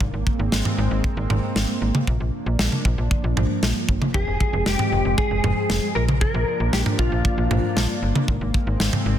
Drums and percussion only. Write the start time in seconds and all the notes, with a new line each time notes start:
0.01 kick
0.27 kick
0.52 snare
0.65 mid tom
1.04 kick
1.30 mid tom
1.56 snare
1.95 mid tom
2.07 kick
2.59 snare
2.72 mid tom
2.85 kick
3.11 kick
3.37 mid tom
3.63 snare
3.89 kick
4.02 mid tom
4.14 kick
4.40 kick
4.66 snare
4.79 mid tom
5.18 kick
5.44 mid tom
5.70 snare
6.09 mid tom
6.21 kick
6.73 snare
6.86 mid tom
6.99 kick
7.25 kick
7.51 mid tom
7.77 snare
8.15 mid tom
8.28 kick
8.54 kick
8.80 snare
8.93 mid tom